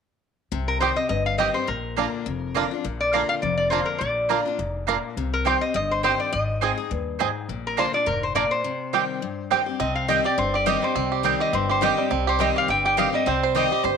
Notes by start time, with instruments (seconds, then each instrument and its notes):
0.52 upright bass C2, steel-string acoustic guitar C3
0.68 resonator guitar played with a steel bar A#4
0.80 steel-string acoustic guitar D#3 G3 C4 G4, mandolin C4 G4 D#5 G5, five-string banjo C4 G4, resonator guitar played with a steel bar C5
0.96 steel-string acoustic guitar C4 G4, resonator guitar played with a steel bar D#5
1.09 upright bass G1, steel-string acoustic guitar G2, resonator guitar played with a steel bar D#5
1.26 resonator guitar played with a steel bar F5
1.38 steel-string acoustic guitar D#3 G3 C4 G4, mandolin C4 G4 D#5 G5, five-string banjo C4 G4, resonator guitar played with a steel bar D#5
1.54 steel-string acoustic guitar C4 G4, resonator guitar played with a steel bar C5
1.67 upright bass A#1, steel-string acoustic guitar A#2, resonator guitar played with a steel bar A#4
1.97 steel-string acoustic guitar D3 A#3 D4 F4, mandolin A#3 F4 D5 A#5, five-string banjo D4 F4 A#4
2.26 upright bass F1, steel-string acoustic guitar F2
2.55 steel-string acoustic guitar D3 A#3 D4 F4, mandolin A#3 F4 D5 A#5, five-string banjo D4 F4 A#4
2.71 steel-string acoustic guitar D4 F4
2.84 upright bass A#1, steel-string acoustic guitar A#2
3.00 resonator guitar played with a steel bar D5
3.13 steel-string acoustic guitar D3 A#3 D4 F4, mandolin A#3 F4 D5 A#5, five-string banjo D4 F4 A#4, resonator guitar played with a steel bar F5
3.29 resonator guitar played with a steel bar F5
3.42 upright bass F1, steel-string acoustic guitar F2, resonator guitar played with a steel bar D5
3.57 resonator guitar played with a steel bar D5
3.70 steel-string acoustic guitar D3 A#3 D4 F4, mandolin A#3 F4 D5 A#5, five-string banjo D4 F4 A#4, resonator guitar played with a steel bar C5
3.86 resonator guitar played with a steel bar A#4
3.98 upright bass A#1, steel-string acoustic guitar A#2, resonator guitar played with a steel bar D5
4.29 steel-string acoustic guitar D3 A#3 D4 F4, mandolin A#3 F4 D5 A#5, five-string banjo D4 F4 A#4
4.45 steel-string acoustic guitar D4 F4
4.59 upright bass F1, steel-string acoustic guitar G#2
4.87 steel-string acoustic guitar A#2, mandolin A#3 F4 D5 A#5, five-string banjo D4 F4 A#4
5.17 upright bass C2, steel-string acoustic guitar C3
5.33 resonator guitar played with a steel bar A#4
5.45 steel-string acoustic guitar D#3 G3 C4 G4, mandolin C4 G4 D#5 G5, five-string banjo C4 G4, resonator guitar played with a steel bar C5
5.61 steel-string acoustic guitar C4 G4, resonator guitar played with a steel bar D#5
5.74 upright bass G1, steel-string acoustic guitar G2, resonator guitar played with a steel bar D#5
5.91 resonator guitar played with a steel bar C5
6.03 steel-string acoustic guitar D#3 G3 C4 G4, mandolin C4 G4 D#5 G5, five-string banjo C4 G4, resonator guitar played with a steel bar C5
6.20 resonator guitar played with a steel bar D5
6.32 upright bass G#1, steel-string acoustic guitar G#2, resonator guitar played with a steel bar D#5
6.61 steel-string acoustic guitar G#3 C4 D#4 G#4, mandolin C4 G#4 D#5 G#5, five-string banjo C4 G#4
6.78 steel-string acoustic guitar D#4 G#4
6.91 upright bass D#2, steel-string acoustic guitar G2
7.19 steel-string acoustic guitar G#2, mandolin C4 G#4 D#5 G#5, five-string banjo C4 G#4
7.49 upright bass A#1, steel-string acoustic guitar A#2
7.67 resonator guitar played with a steel bar A#4
7.77 steel-string acoustic guitar D3 A#3 D4 F4, mandolin A#3 F4 D5 A#5, five-string banjo D4 F4 A#4, resonator guitar played with a steel bar C5
7.93 steel-string acoustic guitar D4 F4, resonator guitar played with a steel bar D5
8.06 upright bass F1, steel-string acoustic guitar G#2, resonator guitar played with a steel bar A#4
8.23 resonator guitar played with a steel bar C5
8.35 steel-string acoustic guitar A#2, mandolin A#3 F4 D5 A#5, five-string banjo D4 F4 A#4, resonator guitar played with a steel bar D5
8.51 resonator guitar played with a steel bar C5
8.64 steel-string acoustic guitar C3
8.93 steel-string acoustic guitar D#3 G3 C4 G4, mandolin C4 G4 D#5 G5, five-string banjo C4 G4
9.22 steel-string acoustic guitar G2
9.50 steel-string acoustic guitar D#3 G3 C4 G4, mandolin C4 G4 D#5 G5, five-string banjo C4 G4
9.66 steel-string acoustic guitar C4 G4
9.80 upright bass C2, steel-string acoustic guitar C3, five-string banjo C4, resonator guitar played with a steel bar D#5
9.95 resonator guitar played with a steel bar F5
10.08 steel-string acoustic guitar D#3 G3 C4 G4, mandolin C4 G4 D#5 G5, five-string banjo C4, resonator guitar played with a steel bar D#5
10.24 steel-string acoustic guitar C4 G4, five-string banjo G4, resonator guitar played with a steel bar D5
10.38 upright bass G1, steel-string acoustic guitar G2, five-string banjo C4, resonator guitar played with a steel bar C5
10.54 five-string banjo G4, resonator guitar played with a steel bar D5
10.66 steel-string acoustic guitar D#3 G3 C4 G4, mandolin C4 G4 D#5 G5, five-string banjo G4, resonator guitar played with a steel bar D#5
10.82 five-string banjo G3, steel-string acoustic guitar C4 G4, resonator guitar played with a steel bar C5
10.95 upright bass C2, steel-string acoustic guitar C3, five-string banjo C4
11.12 five-string banjo G4
11.23 steel-string acoustic guitar D#3 G3 C4 G4, mandolin C4 G4 D#5 G5, five-string banjo C4
11.40 five-string banjo G4, resonator guitar played with a steel bar D#5
11.53 upright bass G1, steel-string acoustic guitar G2, five-string banjo C4, resonator guitar played with a steel bar C5
11.69 five-string banjo G4, resonator guitar played with a steel bar C5
11.81 steel-string acoustic guitar D#3 G3 C4 G4, mandolin C4 G4 D#5 G5, five-string banjo G4, resonator guitar played with a steel bar D#5
11.97 five-string banjo G3, steel-string acoustic guitar C4 G4
12.11 upright bass C2, steel-string acoustic guitar C3, five-string banjo C4
12.27 five-string banjo G4, resonator guitar played with a steel bar C5
12.39 steel-string acoustic guitar D#3 G3 C4 G4, mandolin C4 G4 D#5 G5, five-string banjo C4, resonator guitar played with a steel bar D#5
12.56 five-string banjo G4, resonator guitar played with a steel bar F5
12.68 upright bass G1, steel-string acoustic guitar G2, five-string banjo C4, resonator guitar played with a steel bar G5
12.85 five-string banjo G4, resonator guitar played with a steel bar G5
12.97 steel-string acoustic guitar D#3 G3 C4 G4, mandolin C4 G4 D#5 G5, five-string banjo G4, resonator guitar played with a steel bar F5
13.13 five-string banjo G3, steel-string acoustic guitar C4 G4, resonator guitar played with a steel bar D#5
13.26 upright bass C2, steel-string acoustic guitar C3, five-string banjo C4, resonator guitar played with a steel bar C5
13.43 five-string banjo C5
13.55 steel-string acoustic guitar D#3 G3 C4 G4, mandolin C4 G4 D#5 G5, five-string banjo G4, fiddle D#5
13.71 steel-string acoustic guitar C4 G4, five-string banjo G4
13.84 upright bass G1, steel-string acoustic guitar G2, fiddle C5, five-string banjo C5